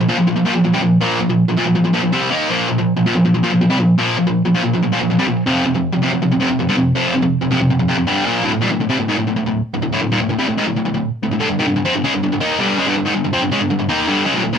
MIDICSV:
0, 0, Header, 1, 2, 480
1, 0, Start_track
1, 0, Tempo, 370828
1, 1306, Time_signature, 4, 2, 24, 8
1, 18876, End_track
2, 0, Start_track
2, 0, Title_t, "Distorted electric guitar"
2, 0, Program_c, 0, 30
2, 8, Note_on_c, 0, 46, 64
2, 14, Note_on_c, 0, 53, 68
2, 95, Note_off_c, 0, 46, 0
2, 104, Note_off_c, 0, 53, 0
2, 111, Note_on_c, 0, 46, 105
2, 119, Note_on_c, 0, 53, 112
2, 210, Note_off_c, 0, 46, 0
2, 221, Note_off_c, 0, 53, 0
2, 226, Note_on_c, 0, 46, 72
2, 236, Note_on_c, 0, 53, 75
2, 334, Note_off_c, 0, 46, 0
2, 340, Note_off_c, 0, 53, 0
2, 350, Note_on_c, 0, 46, 64
2, 355, Note_on_c, 0, 53, 75
2, 448, Note_off_c, 0, 46, 0
2, 453, Note_off_c, 0, 53, 0
2, 464, Note_on_c, 0, 46, 53
2, 468, Note_on_c, 0, 53, 70
2, 569, Note_off_c, 0, 46, 0
2, 575, Note_off_c, 0, 53, 0
2, 585, Note_on_c, 0, 46, 97
2, 591, Note_on_c, 0, 53, 96
2, 685, Note_off_c, 0, 46, 0
2, 692, Note_off_c, 0, 53, 0
2, 701, Note_on_c, 0, 46, 68
2, 707, Note_on_c, 0, 53, 74
2, 811, Note_off_c, 0, 46, 0
2, 820, Note_off_c, 0, 53, 0
2, 827, Note_on_c, 0, 46, 70
2, 836, Note_on_c, 0, 53, 76
2, 944, Note_off_c, 0, 46, 0
2, 949, Note_on_c, 0, 48, 88
2, 951, Note_off_c, 0, 53, 0
2, 957, Note_on_c, 0, 55, 90
2, 1055, Note_off_c, 0, 48, 0
2, 1057, Note_off_c, 0, 55, 0
2, 1061, Note_on_c, 0, 46, 64
2, 1063, Note_on_c, 0, 53, 66
2, 1256, Note_off_c, 0, 46, 0
2, 1257, Note_off_c, 0, 53, 0
2, 1302, Note_on_c, 0, 46, 83
2, 1309, Note_on_c, 0, 53, 92
2, 1310, Note_on_c, 0, 58, 94
2, 1538, Note_off_c, 0, 46, 0
2, 1541, Note_off_c, 0, 53, 0
2, 1542, Note_off_c, 0, 58, 0
2, 1556, Note_on_c, 0, 46, 58
2, 1565, Note_on_c, 0, 53, 72
2, 1667, Note_off_c, 0, 46, 0
2, 1667, Note_off_c, 0, 53, 0
2, 1683, Note_on_c, 0, 46, 62
2, 1683, Note_on_c, 0, 53, 64
2, 1868, Note_off_c, 0, 46, 0
2, 1868, Note_off_c, 0, 53, 0
2, 1927, Note_on_c, 0, 46, 68
2, 1931, Note_on_c, 0, 53, 74
2, 2019, Note_off_c, 0, 46, 0
2, 2035, Note_off_c, 0, 53, 0
2, 2035, Note_on_c, 0, 46, 92
2, 2050, Note_on_c, 0, 53, 102
2, 2139, Note_off_c, 0, 46, 0
2, 2141, Note_off_c, 0, 53, 0
2, 2154, Note_on_c, 0, 46, 70
2, 2156, Note_on_c, 0, 53, 74
2, 2257, Note_off_c, 0, 46, 0
2, 2261, Note_off_c, 0, 53, 0
2, 2273, Note_on_c, 0, 46, 66
2, 2276, Note_on_c, 0, 53, 70
2, 2374, Note_off_c, 0, 46, 0
2, 2381, Note_off_c, 0, 53, 0
2, 2389, Note_on_c, 0, 46, 64
2, 2397, Note_on_c, 0, 53, 71
2, 2491, Note_off_c, 0, 46, 0
2, 2497, Note_off_c, 0, 53, 0
2, 2506, Note_on_c, 0, 46, 90
2, 2513, Note_on_c, 0, 53, 113
2, 2614, Note_off_c, 0, 46, 0
2, 2615, Note_off_c, 0, 53, 0
2, 2630, Note_on_c, 0, 46, 58
2, 2630, Note_on_c, 0, 53, 70
2, 2745, Note_off_c, 0, 46, 0
2, 2751, Note_off_c, 0, 53, 0
2, 2751, Note_on_c, 0, 48, 92
2, 2758, Note_on_c, 0, 60, 99
2, 2760, Note_on_c, 0, 55, 103
2, 2982, Note_off_c, 0, 55, 0
2, 2983, Note_off_c, 0, 60, 0
2, 2984, Note_off_c, 0, 48, 0
2, 2987, Note_on_c, 0, 51, 71
2, 2988, Note_on_c, 0, 58, 75
2, 2995, Note_on_c, 0, 63, 91
2, 3223, Note_off_c, 0, 51, 0
2, 3223, Note_off_c, 0, 58, 0
2, 3227, Note_off_c, 0, 63, 0
2, 3235, Note_on_c, 0, 46, 89
2, 3237, Note_on_c, 0, 53, 101
2, 3245, Note_on_c, 0, 58, 101
2, 3463, Note_off_c, 0, 46, 0
2, 3463, Note_off_c, 0, 53, 0
2, 3472, Note_off_c, 0, 58, 0
2, 3479, Note_on_c, 0, 46, 72
2, 3479, Note_on_c, 0, 53, 79
2, 3588, Note_off_c, 0, 46, 0
2, 3589, Note_off_c, 0, 53, 0
2, 3604, Note_on_c, 0, 46, 64
2, 3605, Note_on_c, 0, 53, 65
2, 3791, Note_off_c, 0, 46, 0
2, 3791, Note_off_c, 0, 53, 0
2, 3840, Note_on_c, 0, 46, 66
2, 3841, Note_on_c, 0, 53, 72
2, 3948, Note_off_c, 0, 46, 0
2, 3953, Note_off_c, 0, 53, 0
2, 3964, Note_on_c, 0, 46, 91
2, 3968, Note_on_c, 0, 53, 94
2, 4067, Note_off_c, 0, 46, 0
2, 4070, Note_off_c, 0, 53, 0
2, 4082, Note_on_c, 0, 46, 65
2, 4086, Note_on_c, 0, 53, 75
2, 4189, Note_off_c, 0, 46, 0
2, 4196, Note_off_c, 0, 53, 0
2, 4204, Note_on_c, 0, 46, 62
2, 4212, Note_on_c, 0, 53, 68
2, 4310, Note_off_c, 0, 46, 0
2, 4311, Note_off_c, 0, 53, 0
2, 4325, Note_on_c, 0, 46, 55
2, 4326, Note_on_c, 0, 53, 67
2, 4424, Note_off_c, 0, 46, 0
2, 4434, Note_off_c, 0, 53, 0
2, 4439, Note_on_c, 0, 46, 91
2, 4450, Note_on_c, 0, 53, 114
2, 4541, Note_off_c, 0, 46, 0
2, 4546, Note_off_c, 0, 53, 0
2, 4556, Note_on_c, 0, 46, 60
2, 4561, Note_on_c, 0, 53, 75
2, 4660, Note_off_c, 0, 46, 0
2, 4663, Note_off_c, 0, 53, 0
2, 4675, Note_on_c, 0, 46, 63
2, 4678, Note_on_c, 0, 53, 71
2, 4782, Note_off_c, 0, 46, 0
2, 4787, Note_on_c, 0, 48, 89
2, 4790, Note_off_c, 0, 53, 0
2, 4795, Note_on_c, 0, 55, 105
2, 4902, Note_off_c, 0, 48, 0
2, 4907, Note_on_c, 0, 46, 61
2, 4909, Note_off_c, 0, 55, 0
2, 4915, Note_on_c, 0, 53, 63
2, 5104, Note_off_c, 0, 46, 0
2, 5108, Note_off_c, 0, 53, 0
2, 5149, Note_on_c, 0, 46, 86
2, 5156, Note_on_c, 0, 53, 103
2, 5164, Note_on_c, 0, 58, 101
2, 5382, Note_off_c, 0, 46, 0
2, 5387, Note_off_c, 0, 53, 0
2, 5393, Note_off_c, 0, 58, 0
2, 5397, Note_on_c, 0, 46, 58
2, 5402, Note_on_c, 0, 53, 70
2, 5510, Note_off_c, 0, 46, 0
2, 5510, Note_off_c, 0, 53, 0
2, 5526, Note_on_c, 0, 46, 67
2, 5526, Note_on_c, 0, 53, 70
2, 5714, Note_off_c, 0, 46, 0
2, 5714, Note_off_c, 0, 53, 0
2, 5761, Note_on_c, 0, 46, 64
2, 5764, Note_on_c, 0, 53, 70
2, 5867, Note_off_c, 0, 46, 0
2, 5871, Note_off_c, 0, 53, 0
2, 5882, Note_on_c, 0, 46, 98
2, 5887, Note_on_c, 0, 53, 95
2, 5987, Note_off_c, 0, 46, 0
2, 5988, Note_off_c, 0, 53, 0
2, 6003, Note_on_c, 0, 46, 62
2, 6003, Note_on_c, 0, 53, 74
2, 6113, Note_off_c, 0, 46, 0
2, 6117, Note_off_c, 0, 53, 0
2, 6129, Note_on_c, 0, 46, 69
2, 6132, Note_on_c, 0, 53, 72
2, 6231, Note_off_c, 0, 46, 0
2, 6233, Note_off_c, 0, 53, 0
2, 6247, Note_on_c, 0, 46, 54
2, 6248, Note_on_c, 0, 53, 66
2, 6354, Note_off_c, 0, 46, 0
2, 6359, Note_off_c, 0, 53, 0
2, 6369, Note_on_c, 0, 46, 98
2, 6374, Note_on_c, 0, 53, 109
2, 6470, Note_off_c, 0, 46, 0
2, 6474, Note_off_c, 0, 53, 0
2, 6485, Note_on_c, 0, 46, 61
2, 6490, Note_on_c, 0, 53, 68
2, 6586, Note_off_c, 0, 46, 0
2, 6598, Note_off_c, 0, 53, 0
2, 6601, Note_on_c, 0, 46, 68
2, 6613, Note_on_c, 0, 53, 81
2, 6710, Note_off_c, 0, 46, 0
2, 6715, Note_on_c, 0, 48, 88
2, 6719, Note_off_c, 0, 53, 0
2, 6724, Note_on_c, 0, 55, 103
2, 6826, Note_off_c, 0, 48, 0
2, 6827, Note_off_c, 0, 55, 0
2, 6831, Note_on_c, 0, 46, 65
2, 6833, Note_on_c, 0, 53, 68
2, 7027, Note_off_c, 0, 46, 0
2, 7028, Note_off_c, 0, 53, 0
2, 7070, Note_on_c, 0, 41, 96
2, 7078, Note_on_c, 0, 48, 98
2, 7082, Note_on_c, 0, 53, 106
2, 7300, Note_off_c, 0, 41, 0
2, 7300, Note_off_c, 0, 48, 0
2, 7314, Note_off_c, 0, 53, 0
2, 7316, Note_on_c, 0, 41, 65
2, 7316, Note_on_c, 0, 48, 81
2, 7419, Note_off_c, 0, 41, 0
2, 7427, Note_off_c, 0, 48, 0
2, 7434, Note_on_c, 0, 41, 67
2, 7442, Note_on_c, 0, 48, 75
2, 7629, Note_off_c, 0, 41, 0
2, 7633, Note_off_c, 0, 48, 0
2, 7669, Note_on_c, 0, 41, 72
2, 7671, Note_on_c, 0, 48, 78
2, 7777, Note_off_c, 0, 41, 0
2, 7788, Note_off_c, 0, 48, 0
2, 7793, Note_on_c, 0, 41, 90
2, 7803, Note_on_c, 0, 48, 104
2, 7901, Note_off_c, 0, 41, 0
2, 7914, Note_off_c, 0, 48, 0
2, 7916, Note_on_c, 0, 41, 76
2, 7928, Note_on_c, 0, 48, 70
2, 8035, Note_off_c, 0, 41, 0
2, 8038, Note_off_c, 0, 48, 0
2, 8051, Note_on_c, 0, 41, 61
2, 8053, Note_on_c, 0, 48, 75
2, 8160, Note_off_c, 0, 41, 0
2, 8167, Note_off_c, 0, 48, 0
2, 8175, Note_on_c, 0, 41, 51
2, 8180, Note_on_c, 0, 48, 67
2, 8267, Note_off_c, 0, 41, 0
2, 8273, Note_off_c, 0, 48, 0
2, 8283, Note_on_c, 0, 41, 105
2, 8289, Note_on_c, 0, 48, 97
2, 8394, Note_off_c, 0, 41, 0
2, 8397, Note_off_c, 0, 48, 0
2, 8409, Note_on_c, 0, 41, 61
2, 8419, Note_on_c, 0, 48, 66
2, 8515, Note_off_c, 0, 41, 0
2, 8530, Note_off_c, 0, 48, 0
2, 8531, Note_on_c, 0, 41, 65
2, 8543, Note_on_c, 0, 48, 76
2, 8646, Note_off_c, 0, 41, 0
2, 8652, Note_off_c, 0, 48, 0
2, 8657, Note_on_c, 0, 43, 89
2, 8659, Note_on_c, 0, 50, 100
2, 8759, Note_off_c, 0, 43, 0
2, 8763, Note_off_c, 0, 50, 0
2, 8764, Note_on_c, 0, 41, 63
2, 8770, Note_on_c, 0, 48, 64
2, 8954, Note_off_c, 0, 41, 0
2, 8957, Note_off_c, 0, 48, 0
2, 9000, Note_on_c, 0, 41, 92
2, 9005, Note_on_c, 0, 48, 92
2, 9010, Note_on_c, 0, 53, 104
2, 9233, Note_off_c, 0, 41, 0
2, 9235, Note_off_c, 0, 48, 0
2, 9238, Note_off_c, 0, 53, 0
2, 9246, Note_on_c, 0, 41, 67
2, 9252, Note_on_c, 0, 48, 69
2, 9340, Note_off_c, 0, 41, 0
2, 9342, Note_off_c, 0, 48, 0
2, 9355, Note_on_c, 0, 41, 59
2, 9357, Note_on_c, 0, 48, 65
2, 9550, Note_off_c, 0, 41, 0
2, 9551, Note_off_c, 0, 48, 0
2, 9595, Note_on_c, 0, 41, 67
2, 9604, Note_on_c, 0, 48, 77
2, 9703, Note_off_c, 0, 41, 0
2, 9713, Note_off_c, 0, 48, 0
2, 9719, Note_on_c, 0, 41, 93
2, 9729, Note_on_c, 0, 48, 117
2, 9825, Note_off_c, 0, 41, 0
2, 9833, Note_off_c, 0, 48, 0
2, 9841, Note_on_c, 0, 41, 71
2, 9849, Note_on_c, 0, 48, 76
2, 9955, Note_off_c, 0, 41, 0
2, 9960, Note_off_c, 0, 48, 0
2, 9971, Note_on_c, 0, 41, 64
2, 9976, Note_on_c, 0, 48, 68
2, 10071, Note_off_c, 0, 41, 0
2, 10073, Note_off_c, 0, 48, 0
2, 10086, Note_on_c, 0, 41, 60
2, 10089, Note_on_c, 0, 48, 59
2, 10188, Note_off_c, 0, 41, 0
2, 10196, Note_off_c, 0, 48, 0
2, 10203, Note_on_c, 0, 41, 97
2, 10211, Note_on_c, 0, 48, 105
2, 10308, Note_off_c, 0, 41, 0
2, 10310, Note_off_c, 0, 48, 0
2, 10324, Note_on_c, 0, 41, 64
2, 10325, Note_on_c, 0, 48, 69
2, 10439, Note_off_c, 0, 41, 0
2, 10442, Note_off_c, 0, 48, 0
2, 10444, Note_on_c, 0, 43, 94
2, 10447, Note_on_c, 0, 50, 94
2, 10450, Note_on_c, 0, 55, 113
2, 10674, Note_off_c, 0, 43, 0
2, 10676, Note_off_c, 0, 50, 0
2, 10677, Note_off_c, 0, 55, 0
2, 10683, Note_on_c, 0, 46, 78
2, 10694, Note_on_c, 0, 53, 75
2, 10694, Note_on_c, 0, 58, 95
2, 10913, Note_off_c, 0, 46, 0
2, 10919, Note_off_c, 0, 53, 0
2, 10919, Note_off_c, 0, 58, 0
2, 10919, Note_on_c, 0, 38, 101
2, 10925, Note_on_c, 0, 45, 103
2, 11022, Note_off_c, 0, 38, 0
2, 11024, Note_off_c, 0, 45, 0
2, 11038, Note_on_c, 0, 38, 59
2, 11039, Note_on_c, 0, 45, 69
2, 11138, Note_off_c, 0, 38, 0
2, 11143, Note_on_c, 0, 39, 94
2, 11152, Note_off_c, 0, 45, 0
2, 11158, Note_on_c, 0, 46, 100
2, 11263, Note_off_c, 0, 39, 0
2, 11270, Note_off_c, 0, 46, 0
2, 11273, Note_on_c, 0, 38, 67
2, 11277, Note_on_c, 0, 45, 76
2, 11378, Note_off_c, 0, 38, 0
2, 11379, Note_off_c, 0, 45, 0
2, 11393, Note_on_c, 0, 38, 63
2, 11394, Note_on_c, 0, 45, 74
2, 11503, Note_off_c, 0, 38, 0
2, 11508, Note_on_c, 0, 48, 98
2, 11515, Note_off_c, 0, 45, 0
2, 11521, Note_on_c, 0, 55, 99
2, 11625, Note_off_c, 0, 48, 0
2, 11632, Note_off_c, 0, 55, 0
2, 11635, Note_on_c, 0, 38, 74
2, 11639, Note_on_c, 0, 45, 77
2, 11751, Note_off_c, 0, 38, 0
2, 11757, Note_on_c, 0, 44, 93
2, 11758, Note_off_c, 0, 45, 0
2, 11764, Note_on_c, 0, 51, 96
2, 11869, Note_off_c, 0, 44, 0
2, 11873, Note_off_c, 0, 51, 0
2, 11879, Note_on_c, 0, 38, 68
2, 11883, Note_on_c, 0, 45, 69
2, 11983, Note_off_c, 0, 38, 0
2, 11989, Note_off_c, 0, 45, 0
2, 11999, Note_on_c, 0, 38, 66
2, 12005, Note_on_c, 0, 45, 67
2, 12103, Note_off_c, 0, 45, 0
2, 12104, Note_off_c, 0, 38, 0
2, 12119, Note_on_c, 0, 38, 73
2, 12119, Note_on_c, 0, 45, 80
2, 12232, Note_off_c, 0, 38, 0
2, 12237, Note_off_c, 0, 45, 0
2, 12247, Note_on_c, 0, 38, 65
2, 12254, Note_on_c, 0, 45, 73
2, 12433, Note_off_c, 0, 38, 0
2, 12437, Note_off_c, 0, 45, 0
2, 12609, Note_on_c, 0, 38, 62
2, 12611, Note_on_c, 0, 45, 65
2, 12700, Note_off_c, 0, 38, 0
2, 12703, Note_off_c, 0, 45, 0
2, 12716, Note_on_c, 0, 38, 73
2, 12719, Note_on_c, 0, 45, 74
2, 12832, Note_off_c, 0, 38, 0
2, 12836, Note_off_c, 0, 45, 0
2, 12848, Note_on_c, 0, 38, 95
2, 12852, Note_on_c, 0, 45, 104
2, 12947, Note_off_c, 0, 38, 0
2, 12951, Note_off_c, 0, 45, 0
2, 12963, Note_on_c, 0, 38, 61
2, 12966, Note_on_c, 0, 45, 66
2, 13078, Note_off_c, 0, 38, 0
2, 13080, Note_off_c, 0, 45, 0
2, 13095, Note_on_c, 0, 39, 91
2, 13099, Note_on_c, 0, 46, 99
2, 13197, Note_off_c, 0, 39, 0
2, 13199, Note_off_c, 0, 46, 0
2, 13215, Note_on_c, 0, 38, 64
2, 13220, Note_on_c, 0, 45, 75
2, 13307, Note_off_c, 0, 38, 0
2, 13317, Note_off_c, 0, 45, 0
2, 13322, Note_on_c, 0, 38, 63
2, 13333, Note_on_c, 0, 45, 77
2, 13438, Note_off_c, 0, 38, 0
2, 13441, Note_off_c, 0, 45, 0
2, 13443, Note_on_c, 0, 48, 87
2, 13446, Note_on_c, 0, 55, 104
2, 13550, Note_off_c, 0, 48, 0
2, 13552, Note_off_c, 0, 55, 0
2, 13566, Note_on_c, 0, 38, 73
2, 13572, Note_on_c, 0, 45, 78
2, 13679, Note_off_c, 0, 38, 0
2, 13682, Note_off_c, 0, 45, 0
2, 13690, Note_on_c, 0, 44, 96
2, 13691, Note_on_c, 0, 51, 107
2, 13794, Note_off_c, 0, 44, 0
2, 13794, Note_off_c, 0, 51, 0
2, 13812, Note_on_c, 0, 38, 68
2, 13815, Note_on_c, 0, 45, 71
2, 13916, Note_off_c, 0, 38, 0
2, 13923, Note_off_c, 0, 45, 0
2, 13932, Note_on_c, 0, 38, 60
2, 13937, Note_on_c, 0, 45, 63
2, 14032, Note_off_c, 0, 38, 0
2, 14034, Note_off_c, 0, 45, 0
2, 14047, Note_on_c, 0, 38, 73
2, 14050, Note_on_c, 0, 45, 78
2, 14147, Note_off_c, 0, 38, 0
2, 14151, Note_off_c, 0, 45, 0
2, 14162, Note_on_c, 0, 38, 64
2, 14167, Note_on_c, 0, 45, 74
2, 14348, Note_off_c, 0, 38, 0
2, 14350, Note_off_c, 0, 45, 0
2, 14535, Note_on_c, 0, 38, 61
2, 14541, Note_on_c, 0, 45, 68
2, 14629, Note_off_c, 0, 38, 0
2, 14642, Note_off_c, 0, 45, 0
2, 14645, Note_on_c, 0, 38, 67
2, 14658, Note_on_c, 0, 45, 80
2, 14747, Note_off_c, 0, 38, 0
2, 14752, Note_on_c, 0, 43, 85
2, 14754, Note_off_c, 0, 45, 0
2, 14759, Note_on_c, 0, 50, 109
2, 14863, Note_off_c, 0, 43, 0
2, 14867, Note_off_c, 0, 50, 0
2, 14878, Note_on_c, 0, 43, 69
2, 14883, Note_on_c, 0, 50, 65
2, 14993, Note_off_c, 0, 43, 0
2, 14996, Note_off_c, 0, 50, 0
2, 15000, Note_on_c, 0, 44, 84
2, 15006, Note_on_c, 0, 51, 98
2, 15098, Note_off_c, 0, 44, 0
2, 15103, Note_on_c, 0, 43, 68
2, 15108, Note_off_c, 0, 51, 0
2, 15113, Note_on_c, 0, 50, 72
2, 15208, Note_off_c, 0, 43, 0
2, 15212, Note_off_c, 0, 50, 0
2, 15223, Note_on_c, 0, 43, 75
2, 15228, Note_on_c, 0, 50, 80
2, 15334, Note_off_c, 0, 50, 0
2, 15339, Note_on_c, 0, 53, 99
2, 15345, Note_off_c, 0, 43, 0
2, 15347, Note_on_c, 0, 60, 113
2, 15456, Note_off_c, 0, 53, 0
2, 15460, Note_off_c, 0, 60, 0
2, 15466, Note_on_c, 0, 43, 68
2, 15474, Note_on_c, 0, 50, 81
2, 15583, Note_off_c, 0, 50, 0
2, 15587, Note_off_c, 0, 43, 0
2, 15588, Note_on_c, 0, 49, 88
2, 15594, Note_on_c, 0, 56, 107
2, 15700, Note_off_c, 0, 49, 0
2, 15703, Note_off_c, 0, 56, 0
2, 15716, Note_on_c, 0, 43, 73
2, 15722, Note_on_c, 0, 50, 87
2, 15820, Note_off_c, 0, 43, 0
2, 15821, Note_off_c, 0, 50, 0
2, 15835, Note_on_c, 0, 43, 62
2, 15836, Note_on_c, 0, 50, 71
2, 15935, Note_off_c, 0, 43, 0
2, 15940, Note_off_c, 0, 50, 0
2, 15950, Note_on_c, 0, 43, 76
2, 15955, Note_on_c, 0, 50, 74
2, 16053, Note_off_c, 0, 50, 0
2, 16058, Note_on_c, 0, 51, 92
2, 16063, Note_on_c, 0, 58, 106
2, 16066, Note_on_c, 0, 63, 107
2, 16068, Note_off_c, 0, 43, 0
2, 16294, Note_off_c, 0, 51, 0
2, 16294, Note_on_c, 0, 43, 101
2, 16297, Note_off_c, 0, 58, 0
2, 16298, Note_off_c, 0, 63, 0
2, 16301, Note_on_c, 0, 50, 89
2, 16305, Note_on_c, 0, 55, 107
2, 16532, Note_off_c, 0, 43, 0
2, 16535, Note_off_c, 0, 50, 0
2, 16537, Note_off_c, 0, 55, 0
2, 16542, Note_on_c, 0, 49, 100
2, 16553, Note_on_c, 0, 56, 105
2, 16651, Note_on_c, 0, 43, 97
2, 16653, Note_off_c, 0, 49, 0
2, 16658, Note_on_c, 0, 50, 99
2, 16661, Note_off_c, 0, 56, 0
2, 16766, Note_off_c, 0, 43, 0
2, 16769, Note_off_c, 0, 50, 0
2, 16781, Note_on_c, 0, 43, 65
2, 16785, Note_on_c, 0, 50, 65
2, 16888, Note_off_c, 0, 43, 0
2, 16893, Note_on_c, 0, 44, 87
2, 16900, Note_off_c, 0, 50, 0
2, 16905, Note_on_c, 0, 51, 96
2, 17011, Note_off_c, 0, 44, 0
2, 17017, Note_off_c, 0, 51, 0
2, 17019, Note_on_c, 0, 43, 66
2, 17023, Note_on_c, 0, 50, 78
2, 17127, Note_off_c, 0, 43, 0
2, 17131, Note_off_c, 0, 50, 0
2, 17142, Note_on_c, 0, 43, 72
2, 17146, Note_on_c, 0, 50, 75
2, 17248, Note_off_c, 0, 50, 0
2, 17253, Note_on_c, 0, 53, 102
2, 17259, Note_on_c, 0, 60, 98
2, 17262, Note_off_c, 0, 43, 0
2, 17366, Note_off_c, 0, 53, 0
2, 17366, Note_on_c, 0, 43, 73
2, 17371, Note_on_c, 0, 50, 73
2, 17373, Note_off_c, 0, 60, 0
2, 17494, Note_off_c, 0, 43, 0
2, 17495, Note_off_c, 0, 50, 0
2, 17500, Note_on_c, 0, 49, 96
2, 17505, Note_on_c, 0, 56, 111
2, 17611, Note_on_c, 0, 43, 68
2, 17613, Note_off_c, 0, 49, 0
2, 17616, Note_off_c, 0, 56, 0
2, 17619, Note_on_c, 0, 50, 73
2, 17726, Note_off_c, 0, 43, 0
2, 17728, Note_off_c, 0, 50, 0
2, 17742, Note_on_c, 0, 43, 63
2, 17744, Note_on_c, 0, 50, 69
2, 17833, Note_off_c, 0, 43, 0
2, 17843, Note_off_c, 0, 50, 0
2, 17849, Note_on_c, 0, 43, 77
2, 17859, Note_on_c, 0, 50, 75
2, 17971, Note_off_c, 0, 50, 0
2, 17974, Note_off_c, 0, 43, 0
2, 17976, Note_on_c, 0, 51, 96
2, 17984, Note_on_c, 0, 58, 104
2, 17990, Note_on_c, 0, 63, 91
2, 18209, Note_on_c, 0, 43, 89
2, 18210, Note_off_c, 0, 51, 0
2, 18214, Note_off_c, 0, 58, 0
2, 18217, Note_off_c, 0, 63, 0
2, 18218, Note_on_c, 0, 50, 89
2, 18227, Note_on_c, 0, 55, 103
2, 18440, Note_off_c, 0, 50, 0
2, 18444, Note_off_c, 0, 55, 0
2, 18445, Note_on_c, 0, 49, 88
2, 18446, Note_off_c, 0, 43, 0
2, 18449, Note_on_c, 0, 56, 100
2, 18564, Note_off_c, 0, 49, 0
2, 18565, Note_on_c, 0, 38, 103
2, 18566, Note_off_c, 0, 56, 0
2, 18571, Note_on_c, 0, 45, 96
2, 18673, Note_off_c, 0, 38, 0
2, 18677, Note_off_c, 0, 45, 0
2, 18689, Note_on_c, 0, 38, 67
2, 18692, Note_on_c, 0, 45, 69
2, 18799, Note_off_c, 0, 38, 0
2, 18804, Note_off_c, 0, 45, 0
2, 18804, Note_on_c, 0, 39, 89
2, 18809, Note_on_c, 0, 46, 92
2, 18876, Note_off_c, 0, 39, 0
2, 18876, Note_off_c, 0, 46, 0
2, 18876, End_track
0, 0, End_of_file